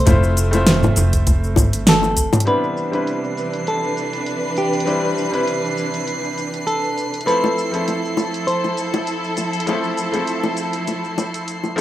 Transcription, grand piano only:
Already playing: A3 C4 E4 F4 A4
0.06 A3 C4 E4 F4 C5
0.51 A3 C4 E4 F4 C5
2.45 G3 B3 C4 D4 E4
2.91 G3 C4 D4 E4 B4
4.86 G3 C4 D4 E4 B4
5.31 G3 C4 D4 E4
5.35 B4
7.26 F3 A3 C4 E4 A4
7.71 F3 A3 C4 E4 A4
9.67 F3 A3 C4 E4 A4
10.12 F3 A3 C4 E4 A4
11.76 F3 A3 C4 E4

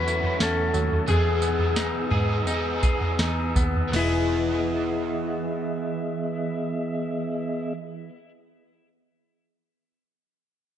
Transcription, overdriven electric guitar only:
Already playing: A3 C#4 F#4
1.07 E3 B3 D#4 G#4
2.10 B3 D#4 G#4
2.47 B3 D#4 G#4
3.88 E3
3.96 B3
4.08 G#4

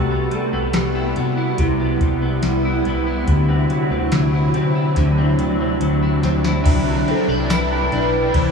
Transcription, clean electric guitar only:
Already playing: C3 B4
0.11 B3
0.31 G3
0.53 B3
0.74 G3
0.95 E4
1.16 B3
1.37 E4
1.59 C3
1.80 B3
2.01 G3
2.22 B3
2.43 G3
2.65 E4
2.86 B3
3.07 E4
3.28 D3
3.49 C4
3.70 F#3
3.91 C4
4.12 F#3
4.33 E4
4.54 C4
4.75 E4
4.97 D3
5.18 C4
5.39 F#3
5.60 C4
5.82 F#3
6.03 E4
6.24 C4
6.45 E4
7.08 C4
7.29 D4
7.50 E4
7.93 D4
8.35 E3

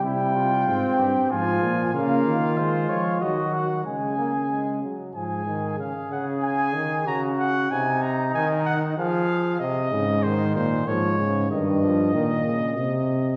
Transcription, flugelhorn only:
0.03 E4
0.35 F4
0.99 G4
1.31 F4
1.94 F4
3.22 F#4
3.85 G#4
5.14 G#4
5.79 G#4
7.07 F#4
7.71 D#4
8.98 G#4

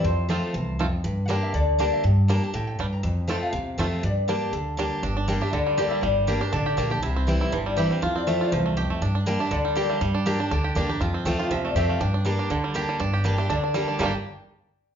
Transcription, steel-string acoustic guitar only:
0.04 F2
0.29 F3 A3 C4 F4
0.54 E2
0.79 F2
1.04 G2
1.28 G3 A#3 D4 G4
1.54 D3
1.79 G3 A#3 D4 G4
2.04 G2
2.28 G3 A#3 D4 G4
2.42 D4 G4
2.54 A2
2.79 G2
3.03 F2
3.27 F3 A3 C4 F4
3.53 C3
3.78 F3 A3 C4 F4
4.03 G2
4.28 G3 A#3 D4 G4
4.53 D3
4.77 G3 A#3 D4 G4
5.03 G2
5.28 G3 A#3 D4 G4
5.41 D4 G4
5.53 D3
5.78 G3 A#3 D4 G4
6.03 G2
6.27 G3 A#3 D4 G4
6.41 D4 G4
6.53 D3
6.77 G3 A#3 D4 G4
6.90 D4 G4
7.03 C3
7.27 E3 G3 C4 E4
7.52 G2
7.77 E3 G3 C4 E4
7.90 C4 E4
8.02 F2
8.27 F3 A3 C4 F4
8.52 E2
8.77 F2
9.02 G2
9.26 G3 A#3 D4 G4
9.39 D4 G4
9.51 D3
9.76 G3 A#3 D4 G4
10.01 G2
10.26 G3 A#3 D4 G4
10.39 D4 G4
10.51 D3
10.75 G3 A#3 D4 G4
10.89 D4 G4
11.01 F2
11.25 F3 A3 C4 F4
11.51 C3
11.76 F3 A3 C4 F4
12.01 G2
12.25 G3 A#3 D4 G4
12.50 D3
12.74 G3 A#3 D4 G4
13.00 G2
13.24 G3 A#3 D4 G4
13.38 D4 G4
13.50 D3
13.74 G3 A#3 D4 G4
13.99 G2 D3 G3 A#3 D4 G4

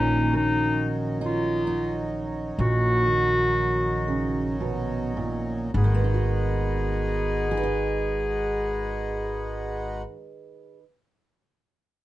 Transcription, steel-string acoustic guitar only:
Already playing: A#2 D#3 C#4 D#4 F#4
0.34 D#3
1.21 D#4
1.67 D#4
2.59 A#2
3.06 D#3
4.08 C#3
4.60 B2
5.17 A#2
5.74 G#2
5.84 D#3
5.94 B3
6.04 D#4
6.14 F#4
7.51 G#4
7.57 B4
7.63 D#5

